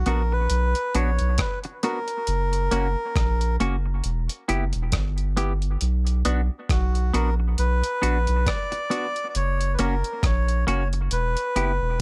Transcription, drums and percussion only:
0.06 closed hi-hat medium
0.50 closed hi-hat medium
0.75 closed hi-hat medium
0.95 closed hi-hat medium
1.19 closed hi-hat soft
1.38 kick loud
1.38 cross-stick loud
1.38 closed hi-hat medium
1.64 closed hi-hat soft
1.83 closed hi-hat medium
2.08 closed hi-hat soft
2.27 closed hi-hat medium
2.53 closed hi-hat medium
2.72 closed hi-hat medium
3.16 kick loud
3.16 cross-stick loud
3.16 closed hi-hat medium
3.41 closed hi-hat soft
3.60 closed hi-hat medium
4.04 closed hi-hat medium
4.29 closed hi-hat medium
4.49 closed hi-hat medium
4.73 closed hi-hat soft
4.92 kick loud
4.92 cross-stick loud
4.92 closed hi-hat medium
5.18 closed hi-hat soft
5.37 closed hi-hat medium
5.62 closed hi-hat soft
5.81 closed hi-hat medium
6.07 closed hi-hat soft
6.25 closed hi-hat medium
6.69 kick loud
6.69 cross-stick medium
6.69 closed hi-hat medium
6.95 closed hi-hat soft
7.14 closed hi-hat medium
7.58 closed hi-hat medium
7.84 closed hi-hat medium
8.03 closed hi-hat medium
8.27 closed hi-hat soft
8.47 kick loud
8.47 cross-stick loud
8.47 closed hi-hat medium
8.72 closed hi-hat soft
8.91 closed hi-hat medium
9.16 closed hi-hat soft
9.35 closed hi-hat medium
9.61 closed hi-hat medium
9.79 closed hi-hat medium
10.04 closed hi-hat soft
10.23 kick loud
10.23 cross-stick loud
10.23 closed hi-hat medium
10.48 closed hi-hat soft
10.68 closed hi-hat medium
10.93 closed hi-hat soft
11.11 closed hi-hat medium
11.37 closed hi-hat medium
11.56 closed hi-hat medium

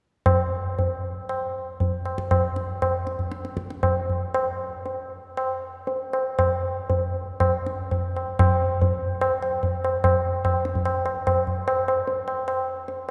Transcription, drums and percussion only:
0.26 tabla na medium
0.26 tabla ge medium
0.79 tabla tin medium
0.79 tabla ge medium
1.29 tabla na medium
1.80 tabla tin medium
1.80 tabla ge medium
2.05 tabla na soft
2.18 tabla ke soft
2.31 tabla na medium
2.31 tabla ge medium
2.56 tabla te medium
2.82 tabla na medium
2.82 tabla ge medium
3.07 tabla te soft
3.19 tabla ge soft
3.32 tabla te medium
3.45 tabla te soft
3.57 tabla ke soft
3.70 tabla te medium
3.83 tabla na medium
3.83 tabla ge medium
4.10 tabla ge soft
4.34 tabla na medium
4.86 tabla tin medium
5.37 tabla na medium
5.87 tabla tin medium
6.13 tabla na soft
6.39 tabla na medium
6.39 tabla ge medium
6.90 tabla tin medium
6.90 tabla ge medium
7.40 tabla na medium
7.40 tabla ge medium
7.66 tabla te medium
7.91 tabla tin medium
7.91 tabla ge medium
8.16 tabla na soft
8.39 tabla na medium
8.39 tabla ge medium
8.82 tabla tin medium
8.82 tabla ge medium
9.21 tabla na medium
9.42 tabla na medium
9.63 tabla tin medium
9.63 tabla ge medium
9.84 tabla na medium
10.04 tabla na medium
10.04 tabla ge medium
10.45 tabla na medium
10.45 tabla ge medium
10.65 tabla te medium
10.75 tabla ge soft
10.85 tabla na medium
11.06 tabla na medium
11.27 tabla na medium
11.27 tabla ge medium
11.47 tabla ge soft
11.68 tabla na medium
11.88 tabla na medium
12.08 tabla tin medium
12.28 tabla na medium
12.48 tabla na medium
12.88 tabla tin medium

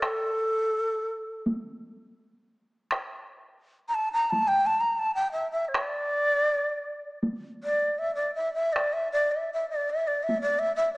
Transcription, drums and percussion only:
0.02 taiko rim soft
1.46 taiko high medium
2.91 taiko rim medium
4.33 taiko high medium
5.74 taiko rim medium
7.23 taiko high medium
8.76 taiko rim medium
10.29 taiko high medium

